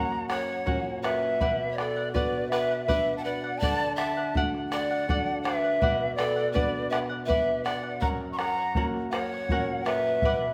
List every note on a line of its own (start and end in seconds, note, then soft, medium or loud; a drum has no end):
0.00 1.37 F#2 medium
0.00 0.65 A#3 medium
0.00 0.65 C#4 medium
0.00 0.65 F#4 medium
0.00 0.28 A#4 medium
0.00 0.30 C#5 medium
0.00 0.26 F#5 medium
0.00 0.30 F#5 medium
0.00 0.25 A#5 loud
0.12 bombo rim soft
0.28 0.48 A#4 medium
0.28 0.99 C#5 medium
0.28 0.48 C#5 medium
0.28 0.99 F#5 loud
0.28 0.47 F#5 medium
0.28 bombo rim medium
0.48 0.65 C#5 soft
0.48 0.66 F#5 medium
0.66 1.38 A#2 medium
0.66 1.38 C#4 soft
0.66 1.38 F#4 medium
0.66 1.02 A#4 medium
0.66 1.03 C#5 medium
0.66 1.04 F#5 medium
0.66 bombo low medium
1.02 1.22 A#4 medium
1.02 1.73 B4 medium
1.02 1.22 C#5 medium
1.02 1.70 E5 medium
1.02 1.21 F#5 medium
1.02 bombo rim medium
1.22 1.41 C#5 soft
1.22 1.41 F#5 medium
1.40 3.58 B2 medium
1.40 1.77 B4 medium
1.40 1.78 D5 medium
1.40 1.78 F#5 loud
1.40 bombo low medium
1.60 bombo rim soft
1.70 1.81 C#5 soft
1.70 1.77 E5 medium
1.76 2.14 A4 medium
1.76 1.96 B4 medium
1.76 2.11 D5 medium
1.76 1.96 D5 medium
1.76 1.95 F#5 medium
1.76 bombo rim medium
1.96 2.13 D5 soft
1.96 2.14 F#5 medium
2.12 2.85 B3 medium
2.12 2.85 D4 soft
2.12 2.86 F#4 medium
2.12 2.50 B4 medium
2.12 2.49 B4 medium
2.12 2.47 D5 medium
2.12 2.51 D5 medium
2.12 2.52 F#5 medium
2.12 bombo low medium
2.48 2.70 B4 medium
2.48 2.86 B4 medium
2.48 2.70 D5 medium
2.48 2.83 E5 medium
2.48 bombo rim medium
2.53 2.69 F#5 medium
2.71 2.87 D5 soft
2.71 2.87 F#5 medium
2.84 3.13 E5 loud
2.88 3.59 B3 medium
2.88 3.59 D4 soft
2.88 3.60 F#4 medium
2.88 3.24 B4 medium
2.88 3.16 B4 medium
2.88 3.25 D5 medium
2.88 3.25 F#5 medium
2.88 bombo low medium
3.17 3.26 F#5 medium
3.17 3.24 A5 medium
3.22 3.43 B4 medium
3.22 3.59 D5 medium
3.22 3.44 D5 medium
3.22 3.59 F#5 medium
3.22 3.43 F#5 medium
3.44 3.62 D5 soft
3.44 3.62 F#5 medium
3.58 5.78 D3 medium
3.58 3.96 D5 loud
3.58 3.95 A5 loud
3.62 3.98 A4 medium
3.62 3.99 D5 medium
3.62 3.99 F#5 medium
3.62 bombo low medium
3.80 bombo rim soft
3.95 4.17 A4 medium
3.95 4.40 E5 medium
3.95 4.40 A5 loud
3.95 bombo rim medium
4.00 4.17 D5 medium
4.00 4.16 F#5 medium
4.17 4.36 D5 soft
4.17 4.35 F#5 medium
4.34 5.06 A3 medium
4.34 5.06 D4 soft
4.34 5.06 F#4 medium
4.34 4.71 A4 medium
4.34 4.72 D5 medium
4.34 4.72 F#5 loud
4.34 bombo low medium
4.55 bombo rim soft
4.67 5.39 F#5 loud
4.72 4.90 A4 medium
4.72 5.41 D5 medium
4.72 4.91 D5 medium
4.72 4.90 F#5 medium
4.72 bombo rim medium
4.91 5.09 D5 soft
4.91 5.09 F#5 medium
5.08 5.80 A3 medium
5.08 5.80 D4 medium
5.08 5.80 F#4 medium
5.08 5.45 A4 medium
5.08 5.46 D5 medium
5.08 5.46 F#5 loud
5.08 bombo low medium
5.41 6.14 B4 medium
5.41 6.12 E5 loud
5.45 5.64 A4 medium
5.45 5.64 D5 medium
5.45 5.63 F#5 medium
5.45 bombo rim medium
5.64 5.81 D5 soft
5.64 5.82 F#5 medium
5.81 7.98 B2 medium
5.81 6.17 B4 medium
5.81 6.17 D5 medium
5.81 6.18 F#5 medium
5.81 bombo low medium
6.15 6.52 A4 medium
6.15 6.37 B4 medium
6.15 6.51 D5 medium
6.15 6.36 D5 medium
6.15 bombo rim medium
6.19 6.35 F#5 medium
6.36 6.54 D5 soft
6.36 6.54 F#5 medium
6.52 7.26 B3 medium
6.52 7.26 D4 medium
6.52 7.27 F#4 medium
6.52 6.88 B4 medium
6.52 6.90 B4 medium
6.52 6.88 D5 medium
6.52 6.91 D5 medium
6.52 6.92 F#5 medium
6.56 bombo rim soft
6.56 bombo low medium
6.89 6.98 B4 medium
6.89 7.10 B4 medium
6.89 7.10 D5 medium
6.89 6.98 E5 medium
6.89 7.08 F#5 medium
6.89 bombo rim medium
7.09 7.28 D5 soft
7.09 7.28 F#5 medium
7.25 7.99 B3 medium
7.25 8.00 D4 soft
7.25 8.00 F#4 medium
7.25 7.61 B4 medium
7.25 7.64 B4 medium
7.25 7.65 D5 loud
7.25 7.61 E5 loud
7.25 7.65 F#5 medium
7.30 bombo low medium
7.64 7.84 B4 medium
7.64 7.99 D5 medium
7.64 7.83 D5 medium
7.64 7.99 F#5 medium
7.64 7.82 F#5 medium
7.64 bombo rim medium
7.83 8.03 D5 soft
7.83 8.01 F#5 soft
8.00 10.19 F#2 medium
8.00 8.37 A#4 medium
8.00 8.38 C#5 medium
8.00 8.07 F#5 medium
8.00 8.39 F#5 medium
8.00 8.08 A#5 loud
8.00 bombo low medium
8.21 bombo rim soft
8.32 8.39 A#5 medium
8.32 8.39 C#6 medium
8.37 8.57 A#4 medium
8.37 8.58 C#5 medium
8.37 8.85 F#5 medium
8.37 8.56 F#5 medium
8.37 8.85 A#5 loud
8.37 bombo rim medium
8.57 8.75 C#5 soft
8.57 8.76 F#5 medium
8.75 9.47 A#3 medium
8.75 9.48 C#4 medium
8.75 9.48 F#4 medium
8.75 9.12 A#4 medium
8.75 9.12 C#5 medium
8.75 9.13 F#5 medium
8.75 bombo low medium
8.94 bombo rim soft
9.10 9.31 A#4 medium
9.10 9.86 C#5 medium
9.10 9.32 C#5 medium
9.10 9.87 F#5 loud
9.10 bombo rim medium
9.14 9.31 F#5 medium
9.32 9.51 C#5 soft
9.32 9.50 F#5 medium
9.49 10.21 A#2 soft
9.49 10.21 C#4 soft
9.49 10.21 F#4 medium
9.49 9.85 A#4 medium
9.49 9.86 C#5 medium
9.49 9.87 F#5 loud
9.49 bombo low medium
9.84 10.05 A#4 medium
9.84 10.54 B4 medium
9.84 10.05 C#5 medium
9.84 10.54 E5 loud
9.84 10.04 F#5 medium
9.84 bombo rim medium
10.06 10.24 C#5 soft
10.06 10.24 F#5 medium
10.22 10.54 B2 medium
10.22 10.54 B4 medium
10.22 10.54 D5 medium
10.22 10.54 F#5 medium
10.22 bombo low medium
10.42 bombo rim soft